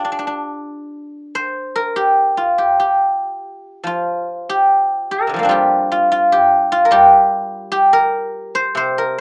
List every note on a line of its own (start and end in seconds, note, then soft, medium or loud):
0.00 1.85 F4 medium
0.00 1.89 G4 medium
0.00 0.60 A#4 medium
0.05 0.11 D4 soft
0.12 0.18 D4 soft
0.19 0.27 D4 soft
0.27 3.07 D4 soft
1.35 3.33 C5 medium
1.76 3.88 A#4 medium
1.96 2.58 G4 medium
2.37 3.86 F4 medium
2.58 2.79 G4 medium
2.80 4.49 G4 medium
3.84 5.33 F3 soft
3.84 5.49 F4 medium
4.49 5.50 G4 medium
5.11 6.85 A#4 medium
5.27 5.45 C3 soft
5.27 5.49 D3 soft
5.34 5.55 F3 soft
5.34 5.48 G3 soft
5.39 8.61 A#3 soft
5.43 8.43 C4 soft
5.43 8.24 D4 soft
5.49 6.90 G3 soft
5.49 5.91 F4 soft
5.49 6.32 G4 medium
5.92 6.11 F4 medium
6.12 6.71 F4 medium
6.32 6.91 G4 medium
6.72 9.20 F4 medium
6.85 7.93 A#4 medium
6.91 9.20 G3 medium
6.91 7.71 G4 medium
7.72 9.20 G4 medium
7.93 8.98 A#4 medium
8.55 8.77 C5 medium
8.75 9.20 C3 medium
8.75 9.18 C5 medium
8.98 9.20 A#4 medium